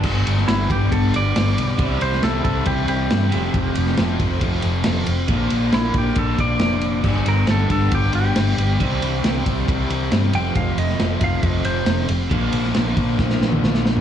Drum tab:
CC |x---------------|----------------|----------------|----------------|
RD |--x-x-x-x-x-x-x-|x-x-x-x-x-x-x-x-|x-x-x-x-x-x-x-x-|x-x-x-x-x-x-x-x-|
SD |---oo-------o---|---oo-------o---|---oo-------o---|----o-------o---|
T2 |----------------|----------------|----------------|----------------|
FT |----------------|----------------|----------------|----------------|
BD |o-----o-o-------|o-----o-o-------|o-----o-o-------|o-----o-o-o-----|

CC |x---------------|----------------|----------------|----------------|
RD |--x-x-x-x-x-x-x-|x-x-x-x-x-x-x-x-|x-x-x-x-x-x-x-x-|x-x-x-x---------|
SD |----o-------o---|----o-------o---|---oo-------o---|---oo---ooo-ooo-|
T2 |----------------|----------------|----------------|-----------o----|
FT |----------------|----------------|----------------|---------------o|
BD |o-----o-o-------|o-----o-o-------|o-----o-o-------|o-----o-o-------|